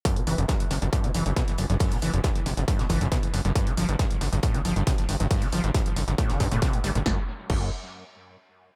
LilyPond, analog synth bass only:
\new Staff \with { instrumentName = "Analog synth bass" } { \clef bass \time 4/4 \tempo 4 = 137 r8 fis,,16 fis,,16 r8 fis,,16 fis,,16 r16 fis,,16 fis,,16 fis,,16 r8 fis,,16 fis,,16 | r8 fis,,16 fis,,16 r8 fis,,16 fis,,16 r16 fis,,16 fis,,16 fis,,16 r8 fis,,16 fis,,16 | r8 g,,16 g,,16 r8 g,,16 g,,16 r16 g,,16 g,,16 g,,16 r8 g,,16 g,,16 | r8 g,,16 g,,16 r8 g,,16 g,,16 r16 eis,,16 g,16 eis,,16 r8 g,,16 g,,16 |
fis,,16 r8. fis,,8 r2 r8 | }